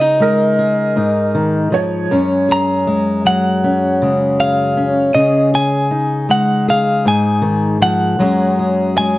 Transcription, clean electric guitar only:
0.00 1.72 D#5 medium
2.52 3.23 A#5 loud
3.27 4.40 F#5 loud
4.40 5.12 F5 medium
5.15 5.50 D#5 medium
5.55 6.26 G#5 loud
6.31 6.66 F#5 medium
6.70 7.08 F5 medium
7.08 7.79 G#5 medium
7.82 8.97 F#5 medium
8.98 9.18 G#5 loud

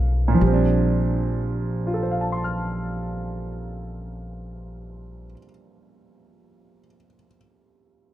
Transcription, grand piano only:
0.00 0.40 D3 soft
0.00 0.33 F3 soft
0.00 0.39 G3 soft
0.00 0.42 A#3 soft
0.00 0.42 C4 medium
0.00 0.43 F5 medium
0.28 5.25 A#2 medium
0.34 5.31 F3 soft
0.41 5.37 G3 soft
0.47 5.44 C4 soft
0.54 5.50 D4 medium
1.87 6.79 F4 soft
1.94 6.87 A4 soft
2.03 6.95 C5 soft
2.11 7.04 F5 soft
2.21 7.14 A5 soft
2.32 7.25 C6 soft
2.44 7.37 F6 soft

